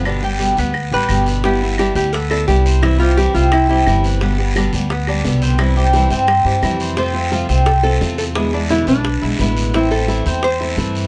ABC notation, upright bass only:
X:1
M:4/4
L:1/8
Q:1/4=174
K:C
V:1 name="Upright bass" clef=bass
G,,,3 D,,2 A,,, G,,,2- | G,,,3 D,,3 C,,2- | C,,3 C,,3 G,,,2- | G,,,3 D,,3 C,,2- |
C,,3 G,,2 G,, F,,2- | F,,3 C,,3 E,,2- | E,,3 B,,,2 B,,, A,,,2- | A,,,3 E,,3 G,,2 |]